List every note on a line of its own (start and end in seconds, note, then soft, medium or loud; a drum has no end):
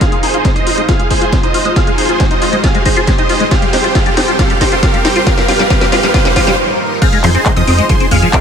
0.00 0.05 F4 medium
0.00 0.20 G#4 medium
0.00 0.20 F5 medium
0.00 kick loud
0.00 snare soft
0.00 closed hi-hat medium
0.00 riser medium
0.12 0.16 G#3 medium
0.12 closed hi-hat soft
0.23 0.26 D#4 medium
0.23 0.51 G#4 medium
0.23 0.51 C5 medium
0.23 open hi-hat loud
0.34 0.37 F4 loud
0.34 closed hi-hat soft
0.45 0.48 G#3 medium
0.45 kick loud
0.45 snare medium
0.45 closed hi-hat medium
0.56 0.59 D#4 medium
0.56 0.84 C5 medium
0.56 0.84 D#5 medium
0.56 closed hi-hat soft
0.67 0.70 F4 loud
0.67 open hi-hat loud
0.78 0.81 G#3 medium
0.78 closed hi-hat soft
0.89 0.92 F4 medium
0.89 1.07 G#4 medium
0.89 1.07 F5 medium
0.89 kick loud
0.89 snare medium
0.89 closed hi-hat medium
0.99 1.03 G#3 loud
0.99 closed hi-hat medium
1.10 1.14 D#4 medium
1.10 1.39 G#4 medium
1.10 1.39 C5 medium
1.10 kick medium
1.10 open hi-hat loud
1.21 1.25 F4 medium
1.21 closed hi-hat soft
1.32 1.36 G#3 medium
1.32 kick loud
1.32 snare medium
1.32 closed hi-hat medium
1.43 1.47 D#4 medium
1.43 1.72 C5 medium
1.43 1.72 D#5 medium
1.43 closed hi-hat soft
1.54 1.58 F4 loud
1.54 open hi-hat loud
1.65 1.69 G#3 loud
1.65 closed hi-hat medium
1.76 1.80 F4 medium
1.76 1.95 G#4 medium
1.76 1.95 F5 loud
1.76 kick loud
1.76 snare medium
1.76 closed hi-hat medium
1.87 1.91 G#3 medium
1.87 closed hi-hat medium
1.98 2.02 D#4 medium
1.98 2.26 G#4 medium
1.98 2.26 C5 medium
1.98 open hi-hat loud
2.09 2.12 F4 loud
2.09 closed hi-hat medium
2.20 2.23 G#3 loud
2.20 kick loud
2.20 snare medium
2.20 closed hi-hat medium
2.31 2.34 D#4 medium
2.31 2.59 C5 medium
2.31 2.59 D#5 loud
2.31 closed hi-hat medium
2.42 2.45 F4 loud
2.42 open hi-hat loud
2.53 2.56 G#3 loud
2.53 closed hi-hat medium
2.64 2.67 F4 loud
2.64 2.83 G#4 medium
2.64 2.83 F5 loud
2.64 kick loud
2.64 snare medium
2.64 closed hi-hat medium
2.75 2.78 G#3 loud
2.75 closed hi-hat medium
2.86 2.89 D#4 medium
2.86 3.14 G#4 medium
2.86 3.14 C5 medium
2.86 kick medium
2.86 open hi-hat loud
2.97 3.00 F4 loud
2.97 closed hi-hat soft
3.07 3.11 G#3 loud
3.07 kick loud
3.07 snare medium
3.07 closed hi-hat medium
3.18 3.22 D#4 medium
3.18 3.47 C5 medium
3.18 3.47 D#5 medium
3.18 closed hi-hat medium
3.29 3.33 F4 loud
3.29 open hi-hat loud
3.40 3.44 G#3 loud
3.40 closed hi-hat medium
3.51 3.55 F4 loud
3.51 3.70 G4 medium
3.51 3.70 F5 loud
3.51 kick loud
3.51 snare medium
3.51 closed hi-hat medium
3.62 3.66 G3 loud
3.62 closed hi-hat medium
3.73 3.77 D#4 medium
3.73 3.93 G4 medium
3.73 3.93 C5 medium
3.73 snare medium
3.73 open hi-hat loud
3.84 3.88 F4 loud
3.84 closed hi-hat medium
3.95 3.99 F4 loud
3.95 4.14 G4 medium
3.95 4.14 F5 loud
3.95 kick loud
3.95 snare medium
3.95 closed hi-hat medium
4.06 4.10 G3 loud
4.06 closed hi-hat medium
4.17 4.21 D#4 medium
4.17 4.37 G4 medium
4.17 4.37 C5 loud
4.17 snare medium
4.17 open hi-hat loud
4.28 4.31 F4 loud
4.28 closed hi-hat medium
4.39 4.42 F4 loud
4.39 4.58 G4 medium
4.39 4.58 F5 loud
4.39 kick loud
4.39 snare medium
4.39 closed hi-hat medium
4.50 4.53 G3 loud
4.50 closed hi-hat medium
4.61 4.64 D#4 medium
4.61 4.81 G4 medium
4.61 4.81 C5 loud
4.61 kick medium
4.61 snare medium
4.61 open hi-hat loud
4.72 4.75 F4 loud
4.72 closed hi-hat medium
4.83 4.86 F4 loud
4.83 5.01 G4 medium
4.83 5.01 F5 loud
4.83 kick loud
4.83 snare medium
4.83 closed hi-hat medium
4.94 4.97 G3 loud
4.94 closed hi-hat medium
5.05 5.08 D#4 medium
5.05 5.25 G4 medium
5.05 5.25 C5 medium
5.05 snare medium
5.05 open hi-hat loud
5.16 5.19 F4 loud
5.16 closed hi-hat medium
5.26 5.30 F4 loud
5.26 5.45 G4 medium
5.26 5.45 F5 loud
5.26 kick loud
5.26 snare medium
5.26 closed hi-hat medium
5.38 5.41 G3 loud
5.38 snare medium
5.38 closed hi-hat medium
5.48 5.52 F4 loud
5.48 5.67 G4 medium
5.48 5.67 F5 loud
5.48 snare loud
5.48 open hi-hat loud
5.59 5.63 G3 loud
5.59 snare medium
5.59 closed hi-hat medium
5.70 5.74 F4 loud
5.70 5.89 G4 medium
5.70 5.89 F5 loud
5.70 kick loud
5.70 snare medium
5.70 closed hi-hat medium
5.81 5.85 G3 loud
5.81 snare medium
5.81 closed hi-hat medium
5.92 5.96 F4 loud
5.92 6.11 G4 medium
5.92 6.11 F5 loud
5.92 snare loud
5.92 open hi-hat loud
6.03 6.07 G3 loud
6.03 snare medium
6.03 closed hi-hat medium
6.14 6.18 F4 loud
6.14 6.33 G4 medium
6.14 6.33 F5 loud
6.14 kick loud
6.14 snare loud
6.14 closed hi-hat medium
6.25 6.29 G3 loud
6.25 snare medium
6.25 closed hi-hat medium
6.36 6.40 F4 loud
6.36 6.55 G4 medium
6.36 6.55 F5 loud
6.36 kick medium
6.36 snare loud
6.36 open hi-hat loud
6.47 6.51 G3 loud
6.47 snare medium
6.47 closed hi-hat medium
7.02 7.08 C4 medium
7.02 7.21 G#4 medium
7.02 7.21 F5 loud
7.02 7.20 F6 loud
7.02 kick loud
7.02 closed hi-hat medium
7.02 crash loud
7.13 7.19 G#3 medium
7.13 closed hi-hat medium
7.24 7.37 F2 loud
7.24 7.30 F3 medium
7.24 7.52 G#4 medium
7.24 7.52 C5 loud
7.24 7.52 C6 medium
7.24 clap medium
7.24 open hi-hat loud
7.35 7.40 C4 medium
7.35 closed hi-hat medium
7.46 7.51 G#3 medium
7.46 kick loud
7.46 clap loud
7.46 closed hi-hat medium
7.56 7.63 F2 loud
7.56 7.62 F3 medium
7.56 7.85 C5 medium
7.56 7.85 D#5 loud
7.56 7.85 D#6 medium
7.56 closed hi-hat medium
7.67 7.81 F2 loud
7.67 7.73 C4 medium
7.67 open hi-hat medium
7.78 7.84 G#3 medium
7.78 closed hi-hat medium
7.89 7.95 F3 medium
7.89 8.08 G#4 medium
7.89 8.08 C5 medium
7.89 8.08 C6 medium
7.89 kick loud
7.89 closed hi-hat medium
8.00 8.06 C4 medium
8.00 closed hi-hat medium
8.11 8.25 F2 medium
8.11 8.17 G#3 medium
8.11 8.39 G#4 medium
8.11 8.39 F5 loud
8.11 8.39 F6 medium
8.11 kick medium
8.11 open hi-hat loud
8.22 8.28 F3 medium
8.22 closed hi-hat medium
8.33 8.39 C4 medium
8.33 kick loud
8.33 clap loud
8.33 closed hi-hat medium